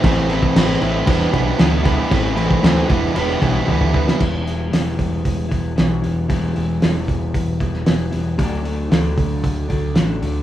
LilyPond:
<<
  \new Staff \with { instrumentName = "Clean electric guitar" } { \time 4/4 \key e \minor \tempo 4 = 115 <a, e a c' e' b'>8 <a, e a c' e' b'>8 <a, e a c' e' b'>8 <a, e a c' e' b'>8 <e g d' e' b'>8 <e g d' e' b'>8 <e g d' e' b'>8 <e g d' e' b'>8 | <a, e a c' e' b'>8 <a, e a c' e' b'>8 <a, e a c' e' b'>8 <e g d' e' b'>8 <e g d' e' b'>8 <e g d' e' b'>8 <e g d' e' b'>8 <e g d' e' b'>8 | <e g b e'>8 <g b e'>8 <e g b e'>4. <g b e'>8 <e g b e'>8 <g b e'>8 | <e g b e'>8 <g b e'>8 <e g b e'>4. <g b e'>8 <e g b e'>8 <g b e'>8 |
<d fis a d'>8 <fis a d'>8 <d fis a d'>4. <fis a d'>8 <d fis a d'>8 <fis a d'>8 | }
  \new Staff \with { instrumentName = "Overdriven electric guitar" } { \time 4/4 \key e \minor <a, e a c' e'>8 <a, e a c' e'>8 <a, e a c' e'>8 <a, e a c' e'>8 <e g b e'>8 <e g b e'>8 <e g b e'>8 <e g b e'>8 | <a, e a c' e'>8 <a, e a c' e'>8 <a, e a c' e'>8 <e g b e'>8 <e g b e'>8 <e g b e'>8 <e g b e'>8 <e g b e'>8 | r1 | r1 |
r1 | }
  \new Staff \with { instrumentName = "Picked electric bass" } { \clef bass \time 4/4 \key e \minor a,,4 a,,8 a,,8 e,,8 b,,8 d,4 | a,,4 d,8 e,,8 e,,8 b,,8 d,4 | e,,4 e,,8 e,,8 e,,8 e,,8 b,,8 e,,8 | e,,8 e,,8 e,,8 e,,8 e,,8 e,,8 e,,8 e,,8 |
d,4 d,8 d,8 d,8 d,8 a,,8 d,8 | }
  \new DrumStaff \with { instrumentName = "Drums" } \drummode { \time 4/4 <cymc bd>8 cymc16 bd16 <cymc sn>8 cymc8 <cymc bd>8 <cymc bd>8 <cymc sn>8 <cymc bd>8 | <cymc bd>8 cymc16 bd16 <cymc sn>8 <cymc bd>8 cymc8 <cymc bd>8 bd16 bd16 bd16 sn16 | <cymc bd>8 hho8 <hho sn>8 <hho bd>8 <hho bd>8 <hho bd>8 <hho sn>8 hho8 | <hho bd>8 hho8 <hho sn>8 <hho bd>8 <hho bd>8 <hho bd>16 sn16 <hho sn>8 hho8 |
<hho bd>8 hho8 <hho sn>8 <hho bd>8 <hho bd>8 <hho bd>8 <hho sn>8 hho8 | }
>>